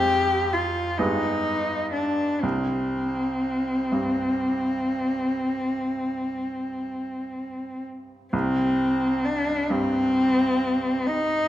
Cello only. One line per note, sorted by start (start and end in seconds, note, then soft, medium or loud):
0.00 0.54 G4 medium
0.53 0.99 F4 soft
0.98 1.92 D#4 medium
1.92 2.43 D4 soft
2.41 7.84 C4 soft
8.34 9.26 C4 medium
9.25 9.71 D4 medium
9.70 11.08 C4 medium
11.07 11.48 D#4 medium